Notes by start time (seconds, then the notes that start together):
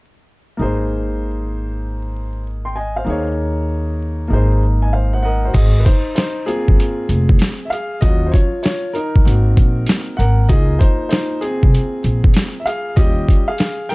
0.57 G#1 A#3 D#4 G#4
0.62 C5
2.65 G5 C6
2.76 D#5 G#5
2.96 C5 F5
3.04 D#2 A#3 D#4 G#4
3.10 C#5
4.28 G#1 A#3 D#4 G#4
4.33 C5
4.82 D#5 G#5
4.93 C5 F5
5.13 C5 F#5
5.23 A#4 D#5 F#5
5.45 F#4 C5
5.54 G#1 G#4 D#5, kick, closed hi-hat, crash
5.80 B4
5.85 D#4 C5, kick, closed hi-hat
6.15 D#4 C5, snare, closed hi-hat
6.46 A#3 C4 F4 G#4, closed hi-hat
6.68 G1, kick
6.80 closed hi-hat
7.09 F1, closed hi-hat
7.29 kick
7.39 snare, closed hi-hat
7.65 E5
7.70 G#4 F5, closed hi-hat
8.01 D#2 F#3 C#4 F4 F#4 D#5, kick, closed hi-hat
8.26 C5
8.32 F4 C#5, kick, closed hi-hat
8.63 F4 C#5, snare, closed hi-hat
8.93 D#4 A#4, closed hi-hat
9.16 C#2, kick
9.24 G#1 A#3 C4 F#4, closed hi-hat
9.57 A#1, kick, closed hi-hat
9.86 snare, closed hi-hat
10.17 G#1 A#4 F#5, closed hi-hat
10.49 C#2 A#3 D#4 F4 G#4 D#5, kick, closed hi-hat
10.79 D#4 C5, kick, closed hi-hat
11.09 D#4 C5, snare, closed hi-hat
11.41 C4 G#4, closed hi-hat
11.63 C2, kick
11.74 closed hi-hat
12.04 A#1, closed hi-hat
12.24 kick
12.34 snare, closed hi-hat
12.60 E5
12.66 G#4 F5, closed hi-hat
12.96 D#2 G3 C#4 F4 G4 D#5, kick, closed hi-hat
13.29 kick, closed hi-hat
13.48 G#4 F5
13.58 snare, closed hi-hat
13.89 A#4 G5, snare, open hi-hat